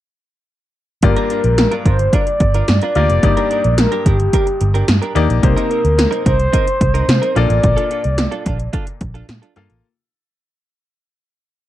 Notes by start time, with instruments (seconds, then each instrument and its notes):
1.02 fingered electric bass G1, grand piano G2 A#3 F4 G4 D5, soft synth lead A#4, muted clean electric guitar stroke, kick, closed hi-hat
1.16 clean electric guitar D4 F4 A#4, closed hi-hat
1.30 clean electric guitar D4 F4 A#4, closed hi-hat
1.44 fingered electric bass A#1, closed hi-hat
1.58 muted clean electric guitar stroke, snare, closed hi-hat
1.71 clean electric guitar D4 F4 A#4, closed hi-hat
1.86 fingered electric bass G1, clean electric guitar D4 F4 A#4, soft synth lead C5, kick, closed hi-hat
1.99 muted clean electric guitar stroke, closed hi-hat
2.13 clean electric guitar D4 F4 A#4, soft synth lead D5, kick, closed hi-hat
2.27 muted clean electric guitar stroke, closed hi-hat
2.40 fingered electric bass G1, muted clean electric guitar stroke, kick, closed hi-hat
2.54 clean electric guitar D4 F4 A#4, closed hi-hat
2.68 fingered electric bass G2, muted clean electric guitar stroke, snare, closed hi-hat
2.82 clean electric guitar D4 F4 A#4, closed hi-hat
2.95 fingered electric bass D2, grand piano A#3 F4 G4 D5, clean electric guitar D4 F4 A#4, soft synth lead D5, closed hi-hat
3.09 fingered electric bass F1, muted clean electric guitar stroke, closed hi-hat
3.23 fingered electric bass G1, grand piano G2 A#3 D#4 G4 D5, muted clean electric guitar stroke, kick, closed hi-hat
3.37 clean electric guitar D4 G4 A#4, closed hi-hat
3.50 clean electric guitar D4 G4 A#4, closed hi-hat
3.64 fingered electric bass A#1, muted clean electric guitar stroke, closed hi-hat
3.78 soft synth lead A#4, muted clean electric guitar stroke, snare, closed hi-hat
3.92 clean electric guitar D4 G4 A#4, closed hi-hat
4.06 fingered electric bass G1, clean electric guitar D4 G4 A#4, soft synth lead G4, kick, closed hi-hat
4.20 closed hi-hat
4.33 clean electric guitar D4 G4 A#4, kick, closed hi-hat
4.47 muted clean electric guitar stroke, closed hi-hat
4.61 fingered electric bass G1, muted clean electric guitar stroke, closed hi-hat
4.74 clean electric guitar D4 G4 A#4, closed hi-hat
4.88 fingered electric bass G2, muted clean electric guitar stroke, snare, closed hi-hat
5.02 clean electric guitar D4 G4 A#4, closed hi-hat
5.15 fingered electric bass D#2, grand piano A#3 D#4 G4 D5, clean electric guitar D4 G4 A#4, closed hi-hat
5.29 fingered electric bass A#1, closed hi-hat
5.43 fingered electric bass C2, grand piano C3 A#3 D#4 G4 C5, soft synth lead A#4, muted clean electric guitar stroke, kick, closed hi-hat
5.57 clean electric guitar C4 D#4 A#4, closed hi-hat
5.70 clean electric guitar C4 D#4 A#4, closed hi-hat
5.84 fingered electric bass D2, muted clean electric guitar stroke, closed hi-hat
5.98 muted clean electric guitar stroke, snare, closed hi-hat
6.11 clean electric guitar C4 D#4 A#4, closed hi-hat
6.25 fingered electric bass C2, clean electric guitar C4 D#4 A#4, soft synth lead C5, kick, closed hi-hat
6.39 muted clean electric guitar stroke, closed hi-hat
6.53 clean electric guitar C4 D#4 A#4, kick, closed hi-hat
6.67 muted clean electric guitar stroke, closed hi-hat
6.81 fingered electric bass C2, muted clean electric guitar stroke, kick, closed hi-hat
6.94 clean electric guitar C4 D#4 A#4, closed hi-hat
7.08 fingered electric bass C3, snare, closed hi-hat
7.22 clean electric guitar C4 D#4 A#4, closed hi-hat
7.35 fingered electric bass A#1, grand piano A#2 A#3 F4 A4 D5, clean electric guitar D4 F4 A4, soft synth lead D5, closed hi-hat
7.49 fingered electric bass A1, muted clean electric guitar stroke, closed hi-hat
7.63 fingered electric bass A#1, muted clean electric guitar stroke, kick, closed hi-hat
7.76 clean electric guitar D4 F4 A4, closed hi-hat
7.90 clean electric guitar D4 F4 A4, closed hi-hat
8.04 fingered electric bass C2, muted clean electric guitar stroke, closed hi-hat
8.18 muted clean electric guitar stroke, snare, closed hi-hat
8.31 clean electric guitar D4 F4 A4, closed hi-hat
8.45 fingered electric bass A#1, clean electric guitar D4 F4 A4, kick, closed hi-hat
8.59 muted clean electric guitar stroke, closed hi-hat
8.73 clean electric guitar D4 F4 A4, kick, closed hi-hat
8.87 closed hi-hat
9.01 fingered electric bass A#1, muted clean electric guitar stroke, kick, closed hi-hat
9.14 clean electric guitar D4 F4 A4, closed hi-hat
9.28 fingered electric bass A#2, muted clean electric guitar stroke, snare, closed hi-hat
9.42 clean electric guitar D4 F4 A4, closed hi-hat
9.56 fingered electric bass G2, grand piano A#3 F4 A4 F5, clean electric guitar D4 F4 A4, closed hi-hat
9.70 fingered electric bass A1, closed hi-hat